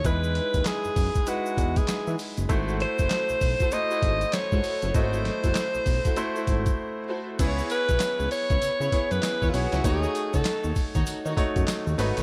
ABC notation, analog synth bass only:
X:1
M:4/4
L:1/16
Q:"Swing 16ths" 1/4=98
K:C#m
V:1 name="Analog synth bass" clef=bass
E,,3 D,, z F,, F,, z3 E,,2 z E, z F,,, | G,,,3 F,,, z B,,, B,,, z3 G,,,2 z G,, z F,,, | G,,,3 F,,, z B,,, B,,, z3 G,,,2 z4 | C,,2 z B,,, z C,, z C,, C, C, z F,, z E,, B,,, C,, |
D,,2 z C,, z D,, z D,, z D, z F,, z D,, G,,, A,,, |]